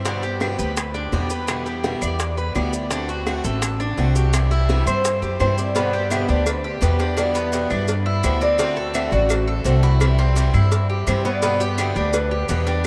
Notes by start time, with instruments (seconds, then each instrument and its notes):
Already playing: upright bass G2
0.05 steel-string acoustic guitar B2 D3 G3 B3 G4, cuban tres D4, high bongo, maracas
0.22 steel-string acoustic guitar G3 B3 G4, cuban tres G4, high bongo, maracas
0.40 steel-string acoustic guitar B2 D3 G3 B3 G4, high bongo, claves, maracas
0.59 upright bass D2, steel-string acoustic guitar G3 B3 G4, cuban tres B4, maracas
0.77 muted steel-string acoustic guitar stroke, high bongo, claves, maracas
0.94 cuban tres D4, high bongo, maracas
1.12 upright bass E2, steel-string acoustic guitar B2 D3 G3 B3 G4, high bongo, low bongo, maracas
1.30 steel-string acoustic guitar G3 B3 G4, cuban tres B4, high bongo, maracas
1.47 steel-string acoustic guitar B2 D3 G3 B3 E4, high bongo, claves, maracas
1.66 steel-string acoustic guitar B3 E4, cuban tres G4, high bongo, maracas
1.84 steel-string acoustic guitar B2 D3 G3 B3 E4, high bongo, maracas
2.02 upright bass E2, steel-string acoustic guitar G3 B3 E4, cuban tres D5, claves, maracas
2.19 muted steel-string acoustic guitar stroke, high bongo, maracas
2.37 cuban tres B4, high bongo, maracas
2.55 upright bass D2, steel-string acoustic guitar B2 D3 G3 B3 E4, cuban tres D5, high bongo, low bongo, claves, maracas
2.73 steel-string acoustic guitar G3 B3 E4, high bongo, maracas
2.90 steel-string acoustic guitar D3 A3 C4 F#4, cuban tres D4, high bongo, maracas
3.09 steel-string acoustic guitar A3 C4 F#4, cuban tres F#4, high bongo, maracas
3.27 steel-string acoustic guitar D3 A3 C4 F#4, high bongo, claves, maracas
3.44 upright bass A1, steel-string acoustic guitar A3 C4 F#4, cuban tres A4, maracas
3.62 muted steel-string acoustic guitar stroke, high bongo, claves, maracas
3.80 cuban tres D4, high bongo, maracas
3.97 upright bass C2, steel-string acoustic guitar D3 A3 C4 F#4, high bongo, low bongo, maracas
4.15 steel-string acoustic guitar A3 C4 F#4, cuban tres G4, high bongo, maracas
4.33 steel-string acoustic guitar C3 E3 G3 C4 E4, high bongo, claves, maracas
4.51 steel-string acoustic guitar G3 C4 E4, cuban tres E4, high bongo, maracas
4.69 steel-string acoustic guitar C3 E3 G3 C4 E4, high bongo, maracas
4.86 upright bass G2, steel-string acoustic guitar G3 C4 E4, cuban tres C5, claves, maracas
5.04 muted steel-string acoustic guitar stroke, high bongo, maracas
5.22 upright bass F#2, cuban tres G4, high bongo, maracas
5.40 upright bass G2, steel-string acoustic guitar C3 E3 G3 C4 E4, cuban tres C5, nylon-string guitar C5, high bongo, low bongo, claves, maracas
5.58 steel-string acoustic guitar G3 C4 E4, nylon-string guitar D5, high bongo, maracas
5.75 steel-string acoustic guitar B2 D3 G3 B3 G4, cuban tres B3, cowbell, maracas
5.93 steel-string acoustic guitar G3 B3 G4, cuban tres G4
6.10 steel-string acoustic guitar B2 D3 G3 B3 G4, nylon-string guitar E5, cowbell, claves, maracas
6.28 upright bass D2, steel-string acoustic guitar G3 B3 G4, cuban tres D4, nylon-string guitar D5, maracas
6.46 nylon-string guitar B4, muted steel-string acoustic guitar stroke, cowbell, claves, maracas
6.64 cuban tres G4
6.81 upright bass E2, steel-string acoustic guitar B2 D3 G3 B3 G4, nylon-string guitar B4, cowbell, maracas
6.99 steel-string acoustic guitar G3 B3 G4, cuban tres D4, cowbell, maracas
7.17 steel-string acoustic guitar B2 D3 G3 B3 E4, nylon-string guitar D5, cowbell, claves, maracas
7.34 steel-string acoustic guitar G3 B3 E4, cuban tres B3, cowbell, maracas
7.52 steel-string acoustic guitar B2 D3 G3 B3 E4, cowbell, maracas
7.70 upright bass G2, steel-string acoustic guitar G3 B3 E4, cuban tres D4, claves, maracas
7.88 muted steel-string acoustic guitar stroke, cowbell, maracas
8.06 cuban tres E4
8.23 upright bass D2, steel-string acoustic guitar B2 D3 G3 B3 E4, nylon-string guitar C5, cowbell, claves, maracas
8.41 steel-string acoustic guitar G3 B3 E4, cuban tres C4, nylon-string guitar D5, cowbell, maracas
8.58 steel-string acoustic guitar D3 A3 C4 F#4, cuban tres C4, cowbell, maracas
8.76 steel-string acoustic guitar A3 C4 F#4, cuban tres A4
8.94 steel-string acoustic guitar D3 A3 C4 F#4, nylon-string guitar E5, cowbell, claves, maracas
9.11 upright bass A1, steel-string acoustic guitar A3 C4 F#4, cuban tres F#4, nylon-string guitar D5, maracas
9.29 nylon-string guitar C5, muted steel-string acoustic guitar stroke, cowbell, claves, maracas
9.47 cuban tres A4
9.64 upright bass C2, steel-string acoustic guitar D3 A3 C4 F#4, nylon-string guitar C5, cowbell, maracas
9.83 steel-string acoustic guitar A3 C4 F#4, cuban tres E4, cowbell, maracas
10.00 steel-string acoustic guitar C3 E3 G3 C4 E4, nylon-string guitar E5, cowbell, claves, maracas
10.18 steel-string acoustic guitar G3 C4 E4, cuban tres C4, cowbell
10.35 steel-string acoustic guitar C3 E3 G3 C4 E4, cowbell, maracas
10.53 upright bass G2, steel-string acoustic guitar G3 C4 E4, cuban tres E4, claves, maracas
10.71 muted steel-string acoustic guitar stroke, cowbell, maracas
10.90 cuban tres G4
11.07 upright bass G2, steel-string acoustic guitar C3 E3 G3 C4 E4, nylon-string guitar C5, cowbell, claves, maracas
11.25 steel-string acoustic guitar G3 C4 E4, cuban tres B3, nylon-string guitar D5, cowbell, maracas
11.42 steel-string acoustic guitar B2 D3 G3 B3 G4, cuban tres B3, cowbell, maracas
11.60 steel-string acoustic guitar G3 B3 G4, cuban tres G4, maracas
11.78 steel-string acoustic guitar B2 D3 G3 B3 G4, nylon-string guitar E5, cowbell, claves, maracas
11.95 upright bass D2, steel-string acoustic guitar G3 B3 G4, cuban tres D4, nylon-string guitar D5, maracas
12.13 nylon-string guitar B4, muted steel-string acoustic guitar stroke, cowbell, claves, maracas
12.31 cuban tres G4
12.49 upright bass E2, steel-string acoustic guitar B2 D3 G3 B3 G4, nylon-string guitar B4, cowbell, maracas
12.67 steel-string acoustic guitar G3 B3 G4, cuban tres D4, cowbell, maracas